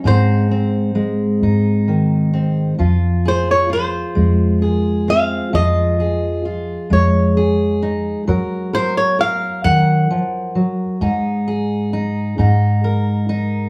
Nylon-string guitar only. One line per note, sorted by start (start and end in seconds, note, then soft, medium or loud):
0.07 1.85 C5 medium
3.28 3.50 C5 medium
3.51 3.71 C#5 medium
3.73 4.68 C5 medium
4.68 5.10 A#4 medium
5.10 5.54 F5 medium
5.55 6.92 D#5 medium
6.93 7.90 C#5 medium
8.75 8.97 C5 medium
8.97 9.20 C#5 medium
9.21 9.64 F5 medium
9.64 12.80 F#5 medium